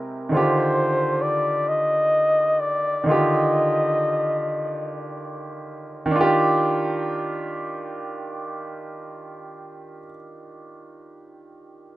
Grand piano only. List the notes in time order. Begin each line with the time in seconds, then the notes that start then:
Already playing: C3 G#3 C4 E4 A#4
0.29 D3 D#3
0.34 F4 G4
3.04 D3 D#3
3.09 F4 G4
6.06 D#3
6.11 D4
6.16 F4
6.21 G4